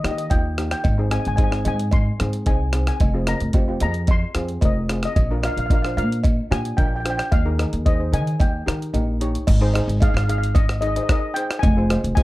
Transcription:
0.04 upright bass D#3, steel pan A#3 D#4 G4 D#5, cross-stick, closed hi-hat
0.11 steel pan D#5
0.18 steel pan D#5, closed hi-hat
0.30 upright bass D#2, steel pan A#3 D#4 F4 G5, kick, closed hi-hat, cowbell
0.58 steel pan A#3 D#4 G4, cross-stick, closed hi-hat
0.71 steel pan G5, cross-stick, closed hi-hat
0.84 upright bass G#1, kick, closed hi-hat, cowbell
0.98 steel pan C4 D#4 G#4
1.11 steel pan C4 D#4 G#4 G#5, cross-stick, closed hi-hat, cowbell
1.20 steel pan G#5
1.25 upright bass G#1, steel pan G#5, closed hi-hat
1.36 steel pan C4 D#4 G#4 G#5, kick, closed hi-hat, cowbell
1.44 steel pan G#5
1.51 steel pan C4 D#4 G#4 G#5, cross-stick
1.64 upright bass G#2, steel pan C4 D#4 G#4 G#5, closed hi-hat, cowbell
1.79 closed hi-hat
1.91 steel pan C6, kick, closed hi-hat, cowbell
2.19 upright bass G#2, steel pan C4 D#4 G#4, cross-stick, closed hi-hat
2.33 closed hi-hat
2.46 upright bass C2, steel pan C4 D#4 G#4 G#5, kick, closed hi-hat, cowbell
2.73 steel pan C4 D#4 G#4, cross-stick, closed hi-hat
2.87 steel pan G#5, cross-stick, closed hi-hat
3.00 upright bass F1, kick, closed hi-hat, cowbell
3.14 steel pan C4 F4 G#4
3.27 steel pan C4 F4 A#4 A#5, cross-stick, closed hi-hat, cowbell
3.40 upright bass F1, closed hi-hat
3.53 steel pan C4 F4 G4, kick, closed hi-hat, cowbell
3.68 steel pan C4 F4 G4
3.80 upright bass F2, steel pan C4 F4 G#4 A#5, closed hi-hat, cowbell
3.94 closed hi-hat
4.07 steel pan C6, kick, closed hi-hat, cowbell
4.35 upright bass F2, steel pan C4 F4 G#4, cross-stick, closed hi-hat
4.49 closed hi-hat
4.61 upright bass F1, steel pan C4 F4 A#4, kick, closed hi-hat, cowbell
4.65 steel pan D#5
4.89 steel pan C4 F4 G#4, cross-stick, closed hi-hat
5.03 steel pan D#5, cross-stick, closed hi-hat
5.16 upright bass A#1, kick, closed hi-hat, cowbell
5.31 steel pan D4 F4 A#4
5.43 steel pan D4 F4 A#4 F5, cross-stick, closed hi-hat, cowbell
5.52 steel pan F5
5.57 upright bass A#1, steel pan F5, closed hi-hat
5.66 steel pan F5
5.70 steel pan D4 F4 A#4 F5, kick, closed hi-hat, cowbell
5.82 steel pan D4 F4 C5 F5, cross-stick
5.97 upright bass A#2, steel pan D4 F4 A#4 F5, closed hi-hat
6.12 closed hi-hat
6.24 kick, closed hi-hat, cowbell
6.51 upright bass A#2, steel pan D4 F4 G4 G#5, cross-stick, closed hi-hat
6.65 closed hi-hat
6.77 upright bass A#1, steel pan D4 F4 A#4 G5, kick, closed hi-hat, cowbell
6.86 steel pan G5
6.96 steel pan G5
7.00 steel pan G5
7.05 steel pan D4 F4 C5, cross-stick, closed hi-hat
7.10 steel pan G5
7.17 steel pan G5, cross-stick, closed hi-hat
7.32 upright bass D#2, steel pan F5, kick, closed hi-hat, cowbell
7.45 steel pan D#4 G#4 A#4
7.58 steel pan D#4 G#4 A#4, cross-stick, closed hi-hat, cowbell
7.73 upright bass D#2, closed hi-hat
7.86 steel pan D#4 G#4 C5 D#5, kick, closed hi-hat, cowbell
7.99 steel pan D#4 G#4 C5
8.11 upright bass D#3, steel pan D#4 G#4 A#4 G#5, closed hi-hat, cowbell
8.27 closed hi-hat
8.40 upright bass D#2, steel pan G5, kick, closed hi-hat, cowbell
8.66 upright bass D#3, steel pan D#4 G4 A#4, cross-stick, closed hi-hat
8.82 closed hi-hat
8.93 upright bass A#1, steel pan D#4 G4 A#4, closed hi-hat, cowbell
9.21 steel pan D#4 G4 C#5, closed hi-hat
9.35 closed hi-hat
9.47 upright bass G#1, kick, closed hi-hat, crash, cowbell
9.61 steel pan D#4 G#4 C5
9.73 steel pan D#4 G#4 C5, cross-stick, closed hi-hat, cowbell
9.88 upright bass G#1, closed hi-hat
10.00 steel pan D#4 G#4 D#5 F5, kick, closed hi-hat, cowbell
10.09 steel pan F5
10.14 upright bass G#1, steel pan F5, cross-stick
10.24 steel pan F5
10.28 steel pan D#4 G#4 D#5 F5, closed hi-hat
10.38 steel pan F5
10.44 closed hi-hat
10.55 steel pan D#5, kick, closed hi-hat, cowbell
10.69 cross-stick
10.81 steel pan D#4 G#4 D#5, closed hi-hat, cowbell
10.87 steel pan D#5
10.96 steel pan D#4 G#4 C5 D#5, closed hi-hat
11.03 steel pan D#5
11.09 steel pan D#4 G#4 A#4 D#5, kick, cross-stick, closed hi-hat, cowbell
11.19 steel pan D#5
11.34 steel pan D#4 G#4 C5 G5, closed hi-hat
11.51 cross-stick, closed hi-hat
11.59 steel pan G#5, kick, cowbell
11.63 upright bass F1, closed hi-hat
11.77 steel pan F4 G#4 C5
11.90 steel pan F4 G#4 C5, cross-stick, closed hi-hat, cowbell
12.04 upright bass F1, closed hi-hat
12.15 steel pan F4 G#4 C5 G#5, kick, closed hi-hat, cowbell

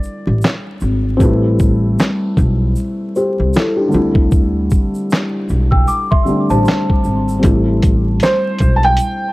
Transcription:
Already playing: felt piano D3 G3 A3 C4 E4 D5
0.03 shaker
0.27 upright bass A1
0.42 snare, clap, shaker
0.80 upright bass G#1, shaker
1.17 upright bass A1, felt piano G3 A3 C4, kick, shaker
1.22 felt piano E4 B4
1.59 kick, shaker
1.99 snare, clap, shaker
2.37 upright bass B1, kick, shaker
2.76 shaker
3.15 felt piano G4 C5, shaker
3.40 upright bass C2
3.54 felt piano E4 A4, snare, clap, shaker
3.76 felt piano D4 G4
3.88 felt piano D3 G3 A3
3.92 upright bass D2, felt piano C4 E4, shaker
4.15 kick
4.31 kick, shaker
4.70 kick, shaker
4.94 shaker
5.10 snare, clap, shaker
5.49 upright bass B1, shaker
5.71 celesta G5 E6, kick
5.88 celesta D6, shaker
6.11 celesta E5 C6, kick
6.25 felt piano D3 G3 A3 C4 D4, shaker
6.50 upright bass A1, celesta C5 A5, shaker
6.65 snare, shaker
6.69 clap
6.90 kick
7.04 upright bass G#1, shaker
7.28 shaker
7.39 felt piano G3 A3 C4, closed hi-hat
7.44 upright bass A1, felt piano E4, kick, shaker
7.83 kick, closed hi-hat, shaker
8.20 felt piano C5, snare, closed hi-hat, shaker
8.24 clap
8.58 upright bass B1, kick, closed hi-hat, shaker
8.76 felt piano A5
8.83 felt piano G5, closed hi-hat
8.97 closed hi-hat, shaker

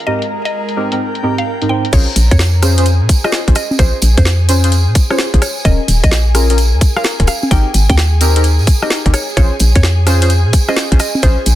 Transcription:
Already playing: analog synth pad G#3 F4 A#4 D#5, ambient pad A#4 A#5
0.07 synth stab G#2 C4 D#4 G4 A#4, synth pluck D#5
0.22 closed hi-hat
0.45 synth pluck D#5, closed hi-hat
0.69 closed hi-hat
0.76 synth stab G#2 C4 D#4 G4 A#4, analog synth pad G5
0.92 synth stab G#2 C4 D#4 G4 A#4, closed hi-hat
1.15 closed hi-hat
1.23 synth stab G#2 C4 D#4 G4 A#4
1.38 synth pluck F5, closed hi-hat
1.62 synth stab G#2 C4 D#4 G4 A#4, closed hi-hat
1.69 synth stab G#2 C4 D#4 G4 C5, synth pluck G5
1.85 closed hi-hat
1.93 fm bass A#1, synth stab C#4 F4 G#4 C5, ambient pad G#4 G#5, synth pluck C#5, kick, closed hi-hat, crash, tambourine
2.16 fm bass A#1, open hi-hat, tambourine
2.31 fm bass F2, synth pluck C#5, kick, closed hi-hat, tambourine
2.39 snare, tambourine
2.62 synth stab C#4 F4 G#4 C5, cross-stick, open hi-hat, tambourine
2.78 synth stab C#4 F4 G#4 C5, closed hi-hat, tambourine
2.86 closed hi-hat, tambourine
3.01 fm bass A#2
3.09 kick, open hi-hat, tambourine
3.24 synth stab C#4 F4 G#4 C5, synth pluck D#5, cross-stick, tambourine
3.32 snare, tambourine
3.48 fm bass A#1, synth stab C#4 F4 G#4 C5, kick, closed hi-hat
3.55 synth pluck D#5, cross-stick, open hi-hat, tambourine
3.71 tambourine, high conga
3.79 fm bass A#1, synth stab C#4 F4 G#4 C5, synth pluck C5, kick, closed hi-hat, tambourine
4.02 fm bass A#1, open hi-hat, tambourine
4.17 fm bass F2, synth pluck C5, kick, closed hi-hat, tambourine, high conga
4.25 snare, tambourine
4.49 synth stab C#4 F4 G#4 C5, open hi-hat, tambourine
4.64 synth stab C#4 F4 G#4 C5, closed hi-hat, tambourine
4.72 closed hi-hat, tambourine
4.87 fm bass A#2
4.95 kick, open hi-hat, tambourine
5.10 synth stab C#4 F4 G#4 C5, synth pluck C#5, cross-stick, tambourine
5.18 snare, tambourine
5.34 fm bass A#1, synth stab C#4 F4 G#4 C5, kick, closed hi-hat
5.42 synth pluck C#5, cross-stick, open hi-hat, tambourine
5.57 tambourine
5.65 fm bass D#1, synth stab C#4 F4 G#4 A#4, synth pluck D#5, kick, closed hi-hat
5.88 fm bass D#1, open hi-hat, tambourine
6.04 fm bass A#1, synth pluck D#5, kick, closed hi-hat, tambourine
6.11 snare, tambourine
6.35 synth stab C#4 F4 G#4 A#4, cross-stick, open hi-hat, tambourine
6.50 synth stab C#4 F4 G#4 A#4, closed hi-hat, tambourine
6.58 closed hi-hat, tambourine
6.73 fm bass D#2
6.81 kick, open hi-hat, tambourine
6.97 synth stab C#4 F4 G#4 A#4, synth pluck F5, cross-stick, tambourine
7.04 snare, tambourine
7.20 fm bass D#1, synth stab C#4 F4 G#4 A#4, kick, closed hi-hat
7.27 synth pluck F5, cross-stick, open hi-hat, tambourine
7.43 tambourine, high conga
7.51 fm bass G#1, synth stab C4 D#4 G4 A#4, synth pluck G5, kick, closed hi-hat, tambourine
7.74 fm bass G#1, open hi-hat, tambourine
7.89 fm bass D#2, synth pluck G5, kick, closed hi-hat, high conga
7.98 snare, tambourine
8.21 synth stab C4 D#4 G4 A#4, open hi-hat, tambourine
8.36 synth stab C4 D#4 G4 A#4, closed hi-hat, tambourine
8.44 closed hi-hat, tambourine
8.59 fm bass G#2, tambourine
8.67 kick, open hi-hat, tambourine
8.82 synth stab C4 D#4 G4 A#4, synth pluck D#5, cross-stick, tambourine
8.90 snare, tambourine
9.06 fm bass G#1, synth stab C4 D#4 G4 A#4, kick, closed hi-hat
9.14 synth pluck C#5, cross-stick, open hi-hat, tambourine
9.29 tambourine
9.37 fm bass A#1, synth stab C#4 F4 G#4 C5, synth pluck C#5, kick, closed hi-hat, tambourine
9.60 fm bass A#1, open hi-hat, tambourine
9.75 fm bass F2, synth pluck C#5, kick, closed hi-hat
9.83 snare, tambourine
10.07 synth stab C#4 F4 G#4 C5, cross-stick, open hi-hat, tambourine
10.22 synth stab C#4 F4 G#4 C5, closed hi-hat, tambourine
10.30 closed hi-hat, tambourine
10.45 fm bass A#2
10.53 kick, open hi-hat, tambourine
10.68 synth stab C#4 F4 G#4 C5, synth pluck D#5, cross-stick, tambourine
10.76 snare, tambourine
10.92 fm bass A#1, synth stab C#4 F4 G#4 C5, kick, closed hi-hat
10.99 synth pluck D#5, cross-stick, open hi-hat, tambourine
11.15 tambourine, high conga
11.22 fm bass A#1, synth stab C#4 F4 G#4 C5, synth pluck C5, kick, closed hi-hat, tambourine
11.46 fm bass A#1, open hi-hat, tambourine

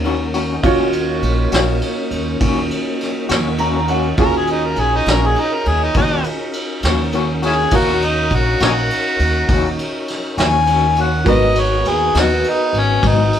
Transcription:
Already playing: upright bass D#2, tonewheel organ C#4 A#4, horn section C#4 D#4, upright piano F4 F#4
0.04 clean electric guitar D#3 A#3 C#4 F#4, ride
0.34 clean electric guitar A#3 C#4 F#4, ride
0.63 upright bass D#2, clean electric guitar D#3 A#3 C#4 F#4, tonewheel organ A#3 C#4, upright piano F4 F#4 C#5, kick, ride
0.93 ride
1.22 upright bass A#1, ride
1.52 upright bass A#1, clean electric guitar A#3 C#4 F#4, snare, ride
1.82 ride
2.11 upright bass D#2, ride
2.40 upright bass D#2, clean electric guitar D#3 A#3 C#4 F#4, kick, ride
2.71 ride
3.00 snare, ride
3.29 upright bass D#2, clean electric guitar A#3 C#4 F#4, snare, ride
3.58 clean electric guitar D#3 A#3 C#4 F#4, upright piano A#5, ride
3.88 clean electric guitar A#3 C#4 F#4, upright piano F#5, ride
4.17 upright bass D#2, clean electric guitar D#3 A#3 C#4 F#4, tonewheel organ C#4 A#4, upright piano F4 F#4 G#4, kick, ride
4.22 harmonica A#4
4.37 harmonica G#4
4.47 ride
4.51 harmonica D#4
4.66 harmonica A#4
4.76 upright bass A#1, ride
4.81 harmonica G#4
4.96 harmonica D#4
5.06 upright bass A#1, clean electric guitar A#3 C#4 F#4, snare, ride
5.10 harmonica A#4
5.26 harmonica G#4
5.36 ride
5.40 harmonica D#4
5.55 harmonica A#4
5.65 upright bass D#2, harmonica G#4, ride
5.83 harmonica D#4
5.94 upright bass D#2, clean electric guitar D#3 A#3 C#4 F#4, harmonica D#4, kick, ride
6.24 ride
6.53 ride
6.83 upright bass D#2, clean electric guitar A#3 C#4 F#4, snare, ride
7.12 clean electric guitar D#3 A#3 C#4 F#4, ride
7.42 clean electric guitar A#3 C#4 F#4, harmonica C#4 E4 G#4, ride
7.71 upright bass D#2, clean electric guitar D#3 A#3 C#4 F#4, upright piano F#4 A#4 F5, tonewheel organ A#4 C#5, kick, ride
7.76 harmonica F#4
8.02 harmonica D#4, ride
8.31 upright bass A#1, harmonica F#4, kick, ride
8.60 upright bass A#1, clean electric guitar A#3 C#4 F#4, harmonica C#4 D#4 F#4, snare, ride
8.90 ride
9.19 upright bass D#2, ride
9.48 upright bass D#2, clean electric guitar D#3 A#3 C#4 F#4, kick, ride
9.79 ride
10.08 snare, ride
10.38 upright bass D#2, clean electric guitar A#3 C#4 F#4, harmonica C#5 E5 G#5, snare, ride
10.67 clean electric guitar D#3 A#3 C#4 F#4, ride
10.96 clean electric guitar A#3 C#4 F#4, ride
11.01 harmonica F#5
11.25 upright bass G#1, clean electric guitar G#2 F#3 B3 D#4, horn section B3 G#4, tonewheel organ B3 D#4 F#4, upright piano F#4 A#4 B4, kick, ride
11.29 harmonica D#5
11.55 ride
11.59 harmonica C#5
11.85 upright bass D#2, harmonica G#4, ride
12.15 upright bass D#2, clean electric guitar F#3 B3 D#4, harmonica F#4, snare, ride
12.44 ride
12.49 harmonica D#4
12.73 upright bass G#1, ride
12.79 harmonica C#4
13.02 upright bass G#1, clean electric guitar G#2 F#3 B3 D#4, kick, ride
13.07 harmonica D#4
13.33 ride

